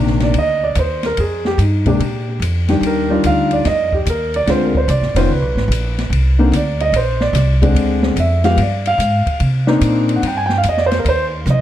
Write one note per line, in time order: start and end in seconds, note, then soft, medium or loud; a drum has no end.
0.00 0.33 A#1 medium
0.00 0.32 C3 medium
0.00 0.32 D#3 medium
0.00 0.32 A#3 medium
0.00 0.33 D4 medium
0.07 snare soft
0.20 0.36 D5 medium
0.20 snare soft
0.20 ride soft
0.34 0.74 D2 medium
0.34 ride medium
0.39 0.63 D#5 medium
0.64 0.76 D5 medium
0.75 1.16 D#2 medium
0.75 1.04 C5 medium
0.75 hi-hat pedal medium
0.75 ride medium
1.03 1.18 A#4 medium
1.03 snare soft
1.03 ride soft
1.17 1.57 F2 medium
1.17 1.45 G#4 medium
1.17 ride medium
1.45 1.59 G4 medium
1.45 snare soft
1.58 1.98 G2 medium
1.58 1.86 D#4 medium
1.58 hi-hat pedal soft
1.58 ride medium
1.86 1.99 C3 medium
1.86 1.99 G#3 medium
1.86 1.99 A#3 medium
1.86 1.99 D4 medium
1.86 2.39 G4 medium
1.86 kick medium
1.86 ride soft
2.00 2.39 A#2 medium
2.00 ride medium
2.40 2.80 F2 medium
2.40 hi-hat pedal medium
2.40 ride medium
2.68 3.21 D#3 medium
2.68 3.09 G3 medium
2.68 3.10 D4 medium
2.68 3.21 G4 medium
2.68 snare soft
2.68 ride soft
2.81 3.21 D#2 medium
2.81 ride medium
2.86 3.23 A#4 medium
3.10 3.62 G3 medium
3.10 3.63 D4 medium
3.10 3.62 D#4 medium
3.10 3.63 F4 medium
3.24 3.64 D2 medium
3.24 3.51 F5 medium
3.24 hi-hat pedal medium
3.24 ride medium
3.51 3.65 D5 medium
3.51 ride soft
3.65 4.05 F2 medium
3.65 3.92 D#5 medium
3.65 snare soft
3.65 ride medium
3.92 4.07 G4 medium
3.92 kick soft
4.06 4.46 D#2 medium
4.06 4.34 A#4 medium
4.06 hi-hat pedal medium
4.06 ride medium
4.34 4.48 D5 medium
4.34 ride soft
4.46 4.87 D2 medium
4.46 4.72 D3 medium
4.46 4.72 G#3 medium
4.46 4.72 C4 medium
4.46 4.72 F4 medium
4.46 4.62 C5 medium
4.46 snare soft
4.46 ride medium
4.64 4.76 A#4 medium
4.75 4.89 C5 medium
4.75 kick medium
4.88 5.02 C2 medium
4.88 5.15 D5 medium
4.88 hi-hat pedal medium
4.88 ride medium
5.01 5.14 G#1 medium
5.01 snare soft
5.14 5.28 F1 medium
5.14 5.28 D#3 medium
5.14 5.29 B3 medium
5.14 5.29 C#4 medium
5.14 5.29 F4 medium
5.14 5.30 C5 medium
5.14 snare soft
5.14 ride medium
5.29 5.42 C#2 medium
5.29 6.08 B4 medium
5.42 5.55 B1 medium
5.55 5.67 G#1 medium
5.55 snare soft
5.68 6.09 A#1 medium
5.68 hi-hat pedal medium
5.68 ride medium
5.98 snare soft
5.98 ride soft
6.10 6.51 C2 medium
6.10 ride medium
6.39 6.51 D3 medium
6.39 6.52 A#3 medium
6.39 6.52 C4 medium
6.39 6.52 D#4 medium
6.52 6.92 D2 medium
6.52 hi-hat pedal medium
6.52 ride medium
6.56 6.81 D5 medium
6.80 6.94 D#5 medium
6.80 ride soft
6.92 7.32 A#1 medium
6.92 ride medium
6.96 7.21 C5 medium
7.21 7.73 D5 medium
7.21 snare soft
7.33 7.74 C2 medium
7.33 snare soft
7.33 hi-hat pedal medium
7.33 ride medium
7.62 8.14 D3 medium
7.62 8.14 G#3 medium
7.62 8.15 C4 medium
7.62 8.15 D4 medium
7.62 kick medium
7.62 ride soft
7.75 8.15 D2 medium
7.75 ride medium
8.03 snare medium
8.16 8.56 F2 medium
8.16 8.45 E5 medium
8.16 hi-hat pedal medium
8.16 ride medium
8.44 8.57 F3 medium
8.44 8.57 G#3 medium
8.44 8.57 B3 medium
8.44 8.58 G4 medium
8.44 8.58 F5 medium
8.44 snare soft
8.44 ride soft
8.57 8.98 G2 medium
8.57 ride medium
8.62 8.87 D5 medium
8.86 9.38 F5 medium
8.86 ride soft
8.98 9.24 G#2 medium
8.98 hi-hat pedal medium
8.98 ride medium
9.27 muted upright bass stroke soft
9.27 kick medium
9.27 ride soft
9.40 9.80 C3 medium
9.40 ride medium
9.67 10.20 A#3 medium
9.67 10.20 C4 medium
9.67 10.20 D4 medium
9.67 10.20 D#4 medium
9.67 snare soft
9.81 10.21 A#2 loud
9.81 hi-hat pedal medium
9.81 ride medium
10.09 ride soft
10.16 10.23 F#5 medium
10.22 10.62 G2 medium
10.22 ride medium
10.27 10.38 G5 medium
10.37 10.50 G#5 medium
10.46 10.55 G5 medium
10.46 snare soft
10.58 10.64 F5 medium
10.63 11.04 F2 medium
10.63 hi-hat pedal medium
10.63 ride medium
10.69 10.79 D#5 medium
10.77 10.91 D5 medium
10.77 snare soft
10.86 10.95 C5 medium
10.91 snare soft
10.91 ride soft
10.99 11.05 A#4 medium
11.05 11.45 D#2 medium
11.05 ride medium
11.09 11.24 C5 medium
11.46 11.61 C2 loud
11.46 hi-hat pedal medium
11.46 high tom soft
11.50 11.61 D#5 medium